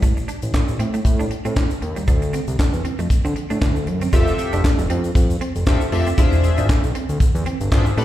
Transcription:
Already playing: A1
0.02 A3, kick, closed hi-hat, shaker
0.17 muted clean electric guitar stroke, shaker
0.28 D4, closed hi-hat, shaker
0.42 A1, closed hi-hat, shaker
0.54 muted clean electric guitar stroke, kick, snare, clap, shaker
0.68 A1, closed hi-hat, shaker
0.79 A2 C4, closed hi-hat
0.94 A3, closed hi-hat, shaker
1.05 A2, kick, closed hi-hat, shaker
1.19 D4, shaker
1.31 muted clean electric guitar stroke, closed hi-hat
1.45 A2 C4, closed hi-hat, shaker
1.56 A3, kick, snare, clap, shaker
1.70 closed hi-hat, shaker
1.82 D#2, muted clean electric guitar stroke, closed hi-hat
1.96 G3, closed hi-hat, shaker
2.08 D2 D4, kick, closed hi-hat, shaker
2.22 muted clean electric guitar stroke, closed hi-hat, shaker
2.33 C4, closed hi-hat, shaker
2.47 C2, closed hi-hat, shaker
2.59 muted clean electric guitar stroke, kick, snare, clap, shaker
2.73 E2, closed hi-hat, shaker
2.85 C4, closed hi-hat
2.99 F2 A3, closed hi-hat, shaker
3.10 D3, kick, closed hi-hat, shaker
3.25 D3 C4, closed hi-hat, shaker
3.36 muted clean electric guitar stroke, closed hi-hat
3.50 A2 D4, closed hi-hat, shaker
3.61 D2 A3, kick, snare, clap, shaker
3.76 shaker
3.87 F#2, muted clean electric guitar stroke, closed hi-hat
4.01 C4, closed hi-hat, shaker
4.13 F1 C4 F4 G4 A4 E5, kick, closed hi-hat, shaker
4.27 closed hi-hat, shaker
4.38 muted clean electric guitar stroke, closed hi-hat, shaker
4.53 F1 D4, closed hi-hat, shaker
4.64 kick, snare, clap, shaker
4.79 F1, closed hi-hat, shaker
4.90 F2 C4, closed hi-hat
5.04 closed hi-hat, shaker
5.15 F2, kick, closed hi-hat, shaker
5.30 closed hi-hat, shaker
5.41 C4, closed hi-hat
5.55 F1, closed hi-hat, shaker
5.66 C4 F4 G4 A4 E5, muted clean electric guitar stroke, kick, snare, clap, shaker
5.81 closed hi-hat, shaker
5.92 F1 A3 C4 F4 G4 A4 E5, open hi-hat
6.06 C4, closed hi-hat, shaker
6.18 E1 D4 E4 F4 G#4 C5 E5, kick, closed hi-hat, shaker
6.32 closed hi-hat, shaker
6.44 muted clean electric guitar stroke, closed hi-hat, shaker
6.57 G#1 D4, closed hi-hat, shaker
6.69 kick, snare, clap, shaker
6.83 B1, closed hi-hat, shaker
6.95 C4, closed hi-hat
7.09 D2, closed hi-hat, shaker
7.20 E2, kick, closed hi-hat, shaker
7.35 E2, closed hi-hat, shaker
7.46 C4, closed hi-hat
7.61 G1, closed hi-hat, shaker
7.71 G#1 D4 F4 G#4 C5 E5, muted clean electric guitar stroke, kick, snare, clap, shaker
7.86 shaker
7.97 A1 A3 C4 G4 A4 B4 D5, open hi-hat

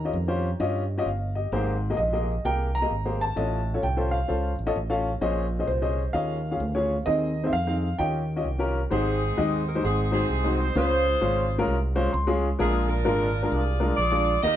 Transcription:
Already playing: D#3 A#5
0.05 C#4 F4 G4 D#5
0.13 F2
0.28 C#4 F4 G4 C5
0.60 G2 C#4 F4 G4 D#5
0.98 C#4 F4 G4 D#5
1.06 G1 F5
1.35 G4 D#5
1.52 G#1 G#2 A#3 G4 G#4 C5
1.90 A#3 G4 G#4 D#5
1.97 A#1 D#5
2.12 A#3 G4 G#4 D#5
2.45 C2 A#3 G4 G#4 A#4 G5
2.75 A#5
2.82 A#3 G4 G#4 D#5
2.91 G#1
3.05 A#3 G4 G#4 C5
3.21 A5
3.36 A1 A2 C#4 F4 A4 D#5
3.74 C#4 F4 A4 C#5
3.83 C2 G5
3.97 C#4 F4 A4 C5
4.11 F5
4.28 C#2 C#4 F4 A4 C5
4.59 A1
4.67 C#4 F4 A4 D#5
4.76 A1
4.90 C#4 F4 A4 F5
5.21 A#1 A#2 C#4 G#4 C5 D#5
5.59 C#4 G#4 C5 D#5
5.67 C2 C5
5.82 C#4 G#4 C5 D#5
6.13 D#2 D#3 C#4 F4 G#4 D#5 F5
6.51 C#4 F4 G#4 F5
6.60 D2
6.75 C#4 F4 G#4 C#5
7.06 D#2 D#3 C4 D#4 G#4 D#5
7.44 C4 D#4 G#4 C5 E5
7.53 F2 F5
7.67 C4 D#4 G#4 F5
7.99 D#2 D#3 C#4 F4 G4 D#5 G5
8.36 C#4 F4 G4 D#5
8.45 C2
8.59 C#4 F4 G4 A#4
8.90 G#1 G#2 G#3 C4 D#4 G4 G#4 C5
9.37 D#2 G#3 D#4 G4 D#5
9.67 A#4
9.75 G#3 D#4 G4 C5
9.83 G#1 G#2 C4 D#4 G#4
10.12 G#3 C4 D#4 F#4 G#4 C5
10.30 C2
10.44 G#3 D#4 F#4 C5
10.59 C5
10.75 C#2 C#3 G#3 C#4 F4 G#4 C5
11.21 G#1 G#3 C#4 F4 C5
11.58 G#3 C#4 F4 A#4
11.67 C2
11.96 G#3 C#4 F4 C5
12.13 C#2 C6
12.27 G#3 C#4 F4 G#4
12.59 A#1 A#2 G#3 D4 F4 G#4 A#4
12.88 D4 F4 A#4
13.05 G#1 G#3 D4 F4 A#4
13.43 G#3 D4 F4 A#4
13.51 C2 F4 G#4 D5
13.80 G#3 D4 F4 A#4
13.96 A#1 F4 G#4 D5
14.11 G#3 D4 F4 G#4
14.42 D#2 D#3 A#3 D#4 G4 A#4 D#5

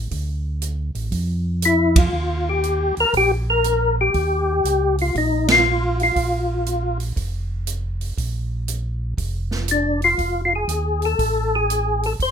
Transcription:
0.11 D2, kick, open hi-hat
0.62 closed hi-hat
0.95 A1, open hi-hat
1.12 F2, kick, open hi-hat
1.62 E4, closed hi-hat
1.96 F4, kick, ride
2.13 D#2
2.49 G4
2.64 closed hi-hat
2.97 D#2 A#4, open hi-hat
3.13 A#1, kick, open hi-hat
3.17 G4
3.50 A#4
3.64 closed hi-hat
4.01 G4
4.14 D#2, kick, open hi-hat
4.64 C#2, closed hi-hat
4.98 F4, open hi-hat
5.15 A#1 D#4, kick, open hi-hat
5.48 F4, snare, ride
6.00 F4, open hi-hat
6.16 A#1, kick, open hi-hat
6.66 closed hi-hat
7.00 open hi-hat
7.16 F1, kick, open hi-hat
7.67 closed hi-hat
8.01 open hi-hat
8.17 A#1, kick, open hi-hat
8.68 closed hi-hat
9.17 F1, kick, open hi-hat
9.51 snare
9.68 D4, closed hi-hat
10.02 F4, open hi-hat
10.18 F1, kick, open hi-hat
10.45 F4
10.55 G#4
10.68 D#2, closed hi-hat
11.02 A4, open hi-hat
11.19 A1, kick, open hi-hat
11.56 G#4
11.70 closed hi-hat
12.03 A4, open hi-hat
12.19 F1 C5, kick, open hi-hat

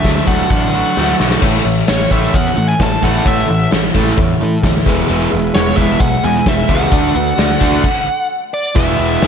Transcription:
Already playing: D3 F#3 A3 E5
0.04 D2 D3 F#3, kick, snare, closed hi-hat
0.27 D2 F#3 A3 F#5, kick
0.50 A1 D4 F#5, kick, closed hi-hat
0.73 A3 F#4
0.96 D2 F#3 A3, snare
1.19 B1 D3 F#4, snare
1.31 snare
1.41 A1 A2 E3 A3 A4 C#5 E5, kick, crash
1.63 A1 A2 E3 A4 C#5 E5, closed hi-hat
1.86 A1 A2 E3 A4 C#5 E5, snare, closed hi-hat
2.11 A1 A2 E3 A3 E5, kick, closed hi-hat
2.33 E2 A2 E3 A4 C#5 E5 F#5, kick, closed hi-hat
2.47 snare
2.56 A2 E3, closed hi-hat
2.69 G#5
2.79 A1 A2 E3 A4 C#5 E5 A5, kick, snare, closed hi-hat
3.03 A1 A2 E3 A3 F#5, kick, snare, closed hi-hat
3.24 A1 A2 E3 A3 A4 C#5 E5 F#5, kick, closed hi-hat
3.48 A1 A2 E3 A4 C#5 F#5, closed hi-hat
3.70 A1 A2 E3 A4 C#5 E5, snare, closed hi-hat
3.94 A1 A2 E3 A3, kick, closed hi-hat
4.17 E2 A2 E3 A4 C#5 E5, kick, closed hi-hat
4.41 A2 E3, closed hi-hat
4.63 D2 A2 E3 A4 C#5 E5, kick, snare, closed hi-hat
4.86 E1 E2 B2 E3 G#3 B3 G#4 B4 E5, kick, snare, closed hi-hat
5.08 E1 E2 B2 E3 G#3 B3 E4 G#4 E5, closed hi-hat
5.31 E1 E2 B2 E3 G#3 G#4 B4 E5, closed hi-hat
5.53 E1 E2 B2 E3 G#3 G#4 B4 C#5 F#5, snare, closed hi-hat
5.77 E1 E2 B2 E3 G#3 B3 E5, kick, closed hi-hat
6.00 B1 E2 B2 E3 G#3 G#4 B4 E5 F#5, kick, closed hi-hat
6.23 E2 B2 E3 G#3 G#5, closed hi-hat
6.36 snare
6.46 E1 E2 B2 E3 G#3 G#4 B4 E5, kick, snare, closed hi-hat
6.68 C#2 E2 B2 E3 G#3 B3 F#5, kick, closed hi-hat
6.91 D2 D3 A3 D4 F#4 A4 D5 F#5, kick, closed hi-hat
7.14 D2 D3 A3 F#4 A4 B4, closed hi-hat
7.36 D2 D3 A3 F#4 A4 D5, snare, closed hi-hat
7.59 D2 D3 A3 D4, kick, closed hi-hat
7.84 kick, crash
8.54 D5
8.75 E1 E2 B2 E3 G#3 B3 E4 G#4 B4 E5, kick, closed hi-hat
8.87 closed hi-hat
8.99 E1, closed hi-hat
9.10 closed hi-hat
9.20 E1 E3 G#3 B3 E4 G#4 B4, snare, closed hi-hat

